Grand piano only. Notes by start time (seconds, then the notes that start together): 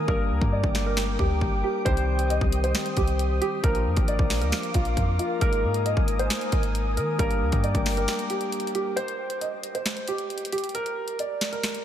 0.08 A#4
0.52 D5
0.86 A#4
1.19 G4
1.64 G4
1.85 C5
2.30 D#5
2.64 C5
2.97 G4
3.41 G4
3.63 A#4
4.08 D5
4.41 A#4
4.74 F4
5.19 F4
5.41 A#4
5.86 D#5
6.19 C5
6.52 A#4
6.97 A#4
7.19 A#4
7.64 D5
7.97 A#4
8.30 G4
8.75 G4
8.96 C5
9.41 D#5
9.75 C5
10.08 G4
10.52 G4
10.75 A#4
11.19 D5
11.52 A#4